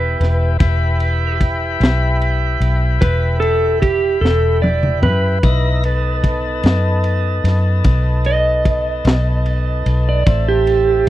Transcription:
0.00 0.17 E1 medium
0.00 0.57 B3 medium
0.00 0.57 E4 medium
0.00 0.57 G4 medium
0.00 1.37 B4 medium
0.20 0.57 E1 medium
0.20 snare soft
0.20 ride medium
0.59 1.77 E1 medium
0.59 5.39 E4 medium
0.59 5.38 G4 medium
0.59 5.38 B4 medium
0.59 kick loud
0.59 ride medium
1.00 ride medium
1.41 kick medium
1.41 ride medium
1.80 2.57 B1 medium
1.80 snare loud
1.80 ride medium
2.22 ride medium
2.60 2.98 B1 medium
2.60 ride medium
3.01 4.18 E1 medium
3.01 3.40 B4 medium
3.01 kick loud
3.01 ride medium
3.40 3.80 A4 medium
3.40 ride medium
3.82 4.21 G4 medium
3.82 kick medium
3.82 ride medium
4.21 5.04 E1 medium
4.21 4.61 A4 medium
4.21 snare medium
4.62 5.01 D5 medium
4.62 high tom medium
4.83 mid tom medium
5.02 5.40 F#2 medium
5.02 6.60 B4 medium
5.02 mid tom loud
5.43 6.60 B1 medium
5.43 5.84 D#4 medium
5.43 5.84 E4 medium
5.43 5.84 A#5 medium
5.43 kick loud
5.43 ride medium
5.84 10.24 B3 medium
5.84 10.24 D#4 medium
5.84 10.24 A4 medium
5.84 ride medium
6.24 kick medium
6.24 ride medium
6.63 7.40 F#2 medium
6.63 snare loud
6.63 ride medium
7.04 ride medium
7.44 7.81 F#2 medium
7.44 snare soft
7.44 ride medium
7.84 9.02 B1 medium
7.84 kick loud
7.84 ride medium
8.24 10.03 D#5 medium
8.24 ride medium
8.65 kick medium
8.65 ride medium
9.05 9.82 B1 medium
9.05 snare loud
9.05 ride medium
9.46 ride medium
9.86 10.23 B1 medium
9.86 ride medium
10.09 10.47 D5 medium
10.26 11.09 A1 medium
10.26 11.09 C4 medium
10.26 11.09 E4 medium
10.26 11.09 A4 medium
10.26 kick loud
10.26 ride medium
10.48 11.06 G4 loud
10.67 ride medium

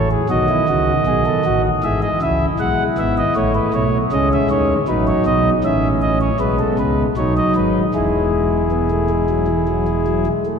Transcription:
0.00 0.16 A1 medium
0.00 0.16 A2 medium
0.00 0.19 E3 medium
0.11 0.28 G#4 medium
0.30 0.54 B1 medium
0.30 0.54 B2 medium
0.30 1.62 D#3 medium
0.30 0.46 F#4 medium
0.30 1.62 D#5 medium
0.49 0.66 E4 medium
0.69 0.92 C#2 medium
0.69 0.92 C#3 medium
0.69 0.92 F#4 medium
1.07 1.30 B1 medium
1.07 1.31 B2 medium
1.07 1.23 G#4 medium
1.26 1.42 A4 medium
1.45 1.69 A1 medium
1.45 1.69 A2 medium
1.45 1.69 F#4 medium
1.84 2.07 G#1 medium
1.84 2.07 G#2 medium
1.84 2.49 E3 medium
1.84 2.08 G#4 medium
1.84 2.00 E5 medium
2.02 2.19 D#5 medium
2.22 2.46 C#2 medium
2.22 2.46 C#3 medium
2.22 3.86 E4 medium
2.22 2.46 E5 medium
2.60 2.84 B1 medium
2.60 2.84 B2 medium
2.60 2.84 G#3 medium
2.60 2.84 F#5 medium
2.98 3.22 G#1 medium
2.98 3.22 G#2 medium
2.98 3.22 B3 medium
2.98 3.15 E5 medium
3.18 3.34 D#5 medium
3.36 3.60 A1 medium
3.36 3.60 A2 medium
3.36 4.02 A3 medium
3.36 3.52 C#5 medium
3.55 3.71 B4 medium
3.74 3.98 B1 medium
3.74 3.98 B2 medium
3.74 3.98 C#5 medium
4.12 4.36 C#2 medium
4.12 4.36 C#3 medium
4.12 4.78 G#3 medium
4.12 4.78 C#4 medium
4.12 4.29 D#5 medium
4.33 4.48 E5 medium
4.51 4.74 D#2 medium
4.51 4.74 D#3 medium
4.51 4.74 C#5 medium
4.88 5.12 A1 medium
4.88 5.12 A2 medium
4.88 5.53 F#3 medium
4.88 5.53 D#4 medium
4.88 5.05 B4 medium
5.07 5.24 C#5 medium
5.26 5.50 B1 medium
5.26 5.50 B2 medium
5.26 5.50 D#5 medium
5.64 6.30 A1 medium
5.64 6.30 A2 medium
5.64 6.30 E3 medium
5.64 6.30 C#4 medium
5.64 5.88 E5 medium
6.02 6.18 D#5 medium
6.21 6.38 C#5 medium
6.40 6.64 B1 medium
6.40 6.64 B2 medium
6.40 7.06 G#3 medium
6.40 7.06 B3 medium
6.40 6.57 B4 medium
6.59 6.76 A4 medium
6.79 7.03 C#2 medium
6.79 7.03 C#3 medium
6.79 7.03 B4 medium
7.17 7.41 B1 medium
7.17 7.41 B2 medium
7.17 7.84 F#3 medium
7.17 7.84 D#4 medium
7.17 7.34 C#5 medium
7.37 7.53 D#5 medium
7.56 7.80 G#1 medium
7.56 7.80 G#2 medium
7.56 7.80 B4 medium
7.94 10.28 E1 medium
7.94 10.28 E2 medium
7.94 8.61 G#3 medium
7.94 10.28 E4 medium
7.94 10.28 G#4 medium
8.71 8.88 B3 medium
8.91 9.08 A3 medium
9.10 9.27 G#3 medium
9.30 9.47 F#3 medium
9.48 9.65 E3 medium
9.68 9.85 F#3 soft
9.88 10.05 G#3 medium
10.07 10.24 F#3 medium
10.26 10.43 G#3 medium
10.46 10.59 A3 medium

